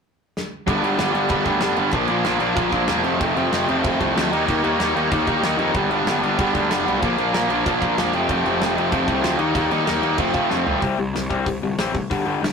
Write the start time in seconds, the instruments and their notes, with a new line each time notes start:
0.37 snare
0.67 picked electric bass G1, overdriven electric guitar G2 D3 G3 B3 D4, kick, crash
0.82 picked electric bass G1, overdriven electric guitar G2 D3 G3 B3 D4, crash
0.98 picked electric bass G1, overdriven electric guitar G2 D3 G3 B3 D4, snare, crash
1.13 picked electric bass G1, overdriven electric guitar G2 D3 G3 B3 D4, crash
1.29 picked electric bass G1, overdriven electric guitar G2 D3 G3 B3 D4, kick, crash
1.45 picked electric bass D2, overdriven electric guitar G2 D3 G3 B3 D4, kick, crash
1.60 picked electric bass F1, overdriven electric guitar G2 D3 G3 B3 D4, snare, crash
1.76 picked electric bass G1, overdriven electric guitar G2 D3 G3 B3 D4, crash
1.91 picked electric bass A#1, overdriven electric guitar A#2 F3 A#3 D4, kick, crash
2.08 picked electric bass A#1, overdriven electric guitar A#2 F3 A#3 D4, crash
2.24 picked electric bass A#1, overdriven electric guitar A#2 F3 A#3 D4, snare, crash
2.40 picked electric bass A#1, overdriven electric guitar A#2 F3 A#3 D4, crash
2.55 picked electric bass A#1, overdriven electric guitar A#2 F3 A#3 D4, kick, crash
2.72 picked electric bass A#1, overdriven electric guitar A#2 F3 A#3 D4, kick, crash
2.88 picked electric bass E1, overdriven electric guitar A#2 F3 A#3 D4, snare, crash
3.03 picked electric bass F1, overdriven electric guitar F2 C3 F3 A3 C4, crash
3.19 picked electric bass F1, overdriven electric guitar F2 C3 F3 A3 C4, kick, crash
3.35 picked electric bass F1, overdriven electric guitar F2 C3 F3 A3 C4, crash
3.51 picked electric bass F1, overdriven electric guitar F2 C3 F3 A3 C4, snare, crash
3.68 picked electric bass F1, overdriven electric guitar F2 C3 F3 A3 C4, crash
3.84 picked electric bass F1, overdriven electric guitar F2 C3 F3 A3 C4, kick, crash
3.99 picked electric bass C2, overdriven electric guitar F2 C3 F3 A3 C4, kick, crash
4.15 picked electric bass D2, overdriven electric guitar F2 C3 F3 A3 C4, snare, crash
4.31 picked electric bass D#2, overdriven electric guitar D#3 G3 A#3 D#4, crash
4.46 picked electric bass D#2, overdriven electric guitar D#3 G3 A#3 D#4, kick, crash
4.63 picked electric bass D#2, overdriven electric guitar D#3 G3 A#3 D#4, crash
4.79 picked electric bass D#2, overdriven electric guitar D#3 G3 A#3 D#4, snare, crash
4.94 picked electric bass D#2, overdriven electric guitar D#3 G3 A#3 D#4, crash
5.10 picked electric bass D#2, overdriven electric guitar D#3 G3 A#3 D#4, kick, crash
5.27 picked electric bass D#2, overdriven electric guitar D#3 G3 A#3 D#4, kick, crash
5.42 picked electric bass D#2, overdriven electric guitar D#3 G3 A#3 D#4, snare, crash
5.57 picked electric bass F2, overdriven electric guitar D#3 G3 A#3 D#4, crash
5.74 picked electric bass G1, overdriven electric guitar G2 D3 G3 B3 D4, kick, crash
5.88 picked electric bass G1, overdriven electric guitar G2 D3 G3 B3 D4, crash
6.05 picked electric bass G1, overdriven electric guitar G2 D3 G3 B3, snare, crash
6.09 overdriven electric guitar D4
6.21 picked electric bass G1, overdriven electric guitar G2 D3 G3 B3 D4, crash
6.38 picked electric bass G1, overdriven electric guitar G2 D3 G3 B3 D4, kick, crash
6.53 picked electric bass D2, overdriven electric guitar G2 D3 G3 B3 D4, kick, crash
6.69 picked electric bass F1, overdriven electric guitar G2 D3 G3 B3 D4, snare, crash
6.84 picked electric bass B1, overdriven electric guitar G2 D3 G3 B3 D4
6.88 crash
7.00 picked electric bass A#1, overdriven electric guitar A#2 F3 A#3 D4, kick, crash
7.16 picked electric bass A#1, overdriven electric guitar A#2 F3 A#3 D4, crash
7.33 picked electric bass A#1, overdriven electric guitar A#2 F3 A#3 D4, snare, crash
7.50 picked electric bass A#1, overdriven electric guitar A#2 F3 A#3 D4, crash
7.65 picked electric bass A#1, overdriven electric guitar A#2 F3 A#3 D4, kick, crash
7.82 picked electric bass A#1, overdriven electric guitar A#2 F3 A#3 D4, kick, crash
7.97 picked electric bass E1, overdriven electric guitar A#2 F3 A#3 D4, snare, crash
8.13 picked electric bass F1, overdriven electric guitar F2 C3 F3 A3 C4, crash
8.29 picked electric bass F1, overdriven electric guitar F2 C3 F3 A3 C4, kick, crash
8.45 picked electric bass F1, overdriven electric guitar F2 C3 F3 A3 C4, crash
8.61 picked electric bass F1, overdriven electric guitar F2 C3 F3 A3 C4, snare, crash
8.76 picked electric bass F1, overdriven electric guitar F2 C3 F3 A3 C4, crash
8.92 picked electric bass F1, overdriven electric guitar F2 C3 F3 A3 C4, kick, crash
9.07 picked electric bass C2, overdriven electric guitar F2 C3 F3 A3 C4, kick, crash
9.23 picked electric bass D2, overdriven electric guitar F2 C3 F3 A3 C4, snare, crash
9.38 picked electric bass D#2, overdriven electric guitar D#3 G3 A#3 D#4, crash
9.53 picked electric bass D#2, overdriven electric guitar D#3 G3 A#3 D#4, kick, crash
9.71 picked electric bass D#2, overdriven electric guitar D#3 G3 A#3 D#4, crash
9.85 picked electric bass D#2, overdriven electric guitar D#3 G3 A#3 D#4, snare, crash
10.01 picked electric bass D#2, overdriven electric guitar D#3 G3 A#3 D#4, crash
10.18 picked electric bass F1, distorted electric guitar F2 C3, overdriven electric guitar F3 A3 C4 F4, kick, crash
10.33 picked electric bass F1, distorted electric guitar F2 C3, overdriven electric guitar F3 A3 C4 F4, kick, crash
10.50 picked electric bass F1, distorted electric guitar F2 C3, overdriven electric guitar F3 A3 C4 F4, snare
10.66 picked electric bass C2, distorted electric guitar F2 C3, overdriven electric guitar F3 A3 C4 F4, floor tom
10.81 picked electric bass C2, overdriven electric guitar C3 G3 C4, kick, open hi-hat
10.99 picked electric bass C2, overdriven electric guitar C3 G3
11.14 picked electric bass C2, overdriven electric guitar C3 G3, snare, open hi-hat
11.29 picked electric bass C2, overdriven electric guitar C3 G3 C4, kick
11.46 picked electric bass C2, overdriven electric guitar C3 G3, kick, open hi-hat
11.62 picked electric bass G1, overdriven electric guitar C3 G3
11.78 picked electric bass A1, overdriven electric guitar C3 G3 C4, snare, open hi-hat
11.92 overdriven electric guitar C3 G3, kick
12.10 picked electric bass G1, overdriven electric guitar G2 D3 G3, kick, open hi-hat
12.25 picked electric bass G1, overdriven electric guitar G2 D3 G3
12.41 picked electric bass G1, overdriven electric guitar G2 D3, snare, open hi-hat